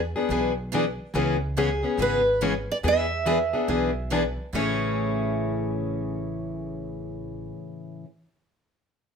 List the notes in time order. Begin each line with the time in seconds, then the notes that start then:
Already playing: E2
0.16 B3 D4 G#4
0.29 B1 E3 B3 D4 G#4 B4
0.73 E3 B3 D4 G#4 B4
1.14 C#2 C#3 E3 G#3 B3 C#4 E4 G#4
1.57 C#3 E3 G#3 B3 C#4 E4 G#4
1.83 B3 C#4 G#4
1.98 G#1 C#3 E3 G#3 B3 C#4 E4 G#4
2.02 B4
2.41 C#3 E3 G#3 B3 C#4 E4 G#4
2.71 D5
2.83 E2 E3 B3 D4 G#4 B4
2.88 E5
3.26 E3 B3 D4 G#4 B4
3.53 B3 D4 G#4
3.68 B1 E3 B3 D4 G#4 B4
4.11 E3 B3 D4 G#4 B4
4.53 A1 A2 C#3 E3 A3 C#4 E4 G#4 C#5